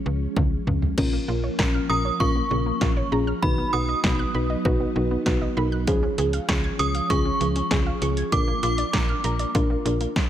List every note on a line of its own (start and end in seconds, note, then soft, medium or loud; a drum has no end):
0.00 0.94 F3 medium
0.00 0.94 G#3 medium
0.00 0.94 C#4 medium
0.00 0.32 C#6 medium
0.06 0.27 C#2 loud
0.36 0.58 C#2 loud
0.36 kick loud
0.36 high tom medium
0.67 0.89 C#2 loud
0.67 mid tom medium
0.82 floor tom medium
0.98 1.19 A#1 loud
0.98 1.08 C#3 medium
0.98 3.40 F3 medium
0.98 3.40 A#3 medium
0.98 3.40 C#4 medium
0.98 1.19 C#4 loud
0.98 1.19 F4 loud
0.98 1.19 A#4 loud
0.98 kick loud
0.98 crash medium
1.13 1.24 A#3 medium
1.28 1.50 A#1 loud
1.28 1.50 C#4 medium
1.28 1.39 F4 medium
1.28 1.50 F4 medium
1.28 1.50 A#4 medium
1.44 1.54 C#5 medium
1.59 1.80 A#1 loud
1.59 1.80 C#4 medium
1.59 1.80 F4 medium
1.59 1.80 A#4 loud
1.59 1.70 A#5 medium
1.59 kick loud
1.59 snare loud
1.74 1.85 F6 medium
1.89 2.11 A#1 loud
1.89 2.11 C#4 medium
1.89 2.11 F4 medium
1.89 2.11 A#4 medium
1.89 2.00 A#5 medium
1.89 2.21 D#6 loud
2.05 2.16 C#5 medium
2.20 2.42 A#1 loud
2.20 2.41 C#4 medium
2.20 2.41 F4 medium
2.20 2.31 F4 medium
2.20 2.41 A#4 loud
2.20 3.08 C#6 loud
2.20 kick loud
2.36 2.46 A#3 medium
2.51 2.72 A#1 loud
2.51 2.61 C#3 medium
2.51 2.72 C#4 medium
2.51 2.72 F4 medium
2.51 2.72 A#4 medium
2.66 2.77 A#3 medium
2.81 3.03 A#1 loud
2.81 3.03 C#4 medium
2.81 2.92 F4 medium
2.81 3.03 F4 medium
2.81 3.03 A#4 medium
2.81 kick loud
2.81 snare loud
2.97 3.07 C#5 medium
3.12 3.33 A#1 loud
3.12 3.33 C#4 medium
3.12 3.33 F4 medium
3.12 3.33 G#4 loud
3.12 3.23 A#5 medium
3.27 3.38 F6 medium
3.42 3.64 B1 loud
3.42 3.53 D#3 medium
3.42 5.85 F#3 medium
3.42 5.85 B3 medium
3.42 5.85 D#4 medium
3.42 3.64 D#4 medium
3.42 3.64 F#4 medium
3.42 3.64 B4 loud
3.42 3.71 B5 medium
3.42 kick loud
3.58 3.69 B3 medium
3.73 3.95 B1 medium
3.73 3.95 D#4 medium
3.73 3.84 F#4 medium
3.73 3.94 F#4 medium
3.73 3.95 B4 medium
3.73 4.61 D#6 loud
3.89 3.99 D#5 medium
4.04 4.25 B1 loud
4.04 4.25 D#4 medium
4.04 4.25 F#4 medium
4.04 4.25 B4 medium
4.04 4.15 B5 medium
4.04 kick loud
4.04 snare loud
4.19 4.30 F#6 medium
4.34 4.56 B1 medium
4.34 4.56 D#4 medium
4.34 4.56 F#4 medium
4.34 4.56 B4 medium
4.34 4.45 B5 medium
4.50 4.60 D#5 medium
4.65 4.87 B1 loud
4.65 4.86 D#4 loud
4.65 4.76 F#4 medium
4.65 4.86 F#4 loud
4.65 4.86 B4 loud
4.65 kick loud
4.80 4.91 B3 medium
4.96 5.17 B1 loud
4.96 5.06 D#3 medium
4.96 5.17 D#4 medium
4.96 5.17 F#4 medium
4.96 5.17 B4 loud
5.11 5.22 B3 medium
5.26 5.48 B1 loud
5.26 5.48 D#4 medium
5.26 5.37 F#4 medium
5.26 5.48 F#4 medium
5.26 5.48 B4 loud
5.26 kick loud
5.26 snare loud
5.42 5.52 D#5 medium
5.57 5.89 B1 loud
5.57 5.78 D#4 medium
5.57 5.78 F#4 medium
5.57 5.78 A#4 loud
5.57 5.68 B5 medium
5.72 5.83 F#6 medium
5.87 6.09 C#2 loud
5.87 5.98 F3 loud
5.87 10.12 F3 medium
5.87 8.30 G#3 medium
5.87 8.30 C#4 medium
5.87 6.09 C#4 loud
5.87 6.09 F4 loud
5.87 6.09 G#4 loud
5.87 kick loud
5.87 closed hi-hat medium
6.03 6.13 C#4 medium
6.18 6.40 C#2 loud
6.18 6.39 C#4 medium
6.18 6.39 F4 medium
6.18 6.29 G#4 medium
6.18 6.39 G#4 loud
6.18 closed hi-hat medium
6.33 6.44 F5 medium
6.33 closed hi-hat medium
6.49 6.70 C#2 loud
6.49 6.70 C#4 medium
6.49 6.70 F4 medium
6.49 6.70 G#4 medium
6.49 6.59 C#6 medium
6.49 kick loud
6.49 snare loud
6.49 closed hi-hat medium
6.64 6.75 G#6 medium
6.79 7.01 C#2 loud
6.79 7.01 C#4 medium
6.79 7.01 F4 medium
6.79 7.01 G#4 medium
6.79 6.90 C#6 medium
6.79 7.11 D#6 loud
6.79 closed hi-hat medium
6.95 7.05 F5 medium
6.95 closed hi-hat medium
7.10 7.31 C#2 loud
7.10 7.31 C#4 medium
7.10 7.31 F4 medium
7.10 7.21 G#4 medium
7.10 7.31 G#4 loud
7.10 7.98 C#6 loud
7.10 kick loud
7.10 closed hi-hat medium
7.25 7.36 C#4 medium
7.40 7.62 C#2 loud
7.40 7.51 F3 medium
7.40 7.62 C#4 medium
7.40 7.62 F4 medium
7.40 7.62 G#4 medium
7.40 closed hi-hat medium
7.56 7.66 C#4 medium
7.56 closed hi-hat medium
7.71 7.93 C#2 loud
7.71 7.92 C#4 medium
7.71 7.92 F4 medium
7.71 7.82 G#4 medium
7.71 7.92 G#4 medium
7.71 kick loud
7.71 snare loud
7.71 closed hi-hat medium
7.86 7.97 F5 medium
8.02 8.23 C#2 loud
8.02 8.23 C#4 medium
8.02 8.23 F4 medium
8.02 8.23 G#4 loud
8.02 8.12 C#6 medium
8.02 closed hi-hat medium
8.17 8.28 G#6 medium
8.17 closed hi-hat medium
8.32 8.54 A#1 loud
8.32 8.43 D3 medium
8.32 10.14 A#3 medium
8.32 8.54 D4 medium
8.32 10.14 D4 medium
8.32 8.54 F4 medium
8.32 8.54 A#4 loud
8.32 8.62 D6 loud
8.32 kick loud
8.32 closed hi-hat medium
8.48 8.58 A#3 medium
8.63 8.84 A#1 loud
8.63 8.84 D4 medium
8.63 8.74 F4 medium
8.63 8.84 F4 medium
8.63 8.84 A#4 medium
8.63 9.51 D6 loud
8.63 closed hi-hat medium
8.78 8.89 D5 medium
8.78 closed hi-hat medium
8.93 9.15 A#1 loud
8.93 9.15 D4 medium
8.93 9.15 F4 medium
8.93 9.15 A#4 medium
8.93 9.04 A#5 medium
8.93 kick loud
8.93 snare loud
8.93 closed hi-hat medium
9.09 9.20 F6 medium
9.24 9.46 A#1 loud
9.24 9.46 D4 medium
9.24 9.45 F4 medium
9.24 9.45 A#4 medium
9.24 9.35 A#5 medium
9.24 closed hi-hat medium
9.39 9.50 D5 medium
9.39 closed hi-hat medium
9.55 9.76 A#1 loud
9.55 9.76 D4 loud
9.55 9.65 F4 medium
9.55 9.76 F4 loud
9.55 9.76 A#4 loud
9.55 kick loud
9.55 closed hi-hat medium
9.70 9.81 A#3 medium
9.85 10.07 A#1 loud
9.85 9.96 D3 medium
9.85 10.07 D4 medium
9.85 10.07 F4 medium
9.85 10.07 A#4 loud
9.85 closed hi-hat medium
10.01 10.11 A#3 medium
10.01 closed hi-hat medium
10.16 kick loud
10.16 snare medium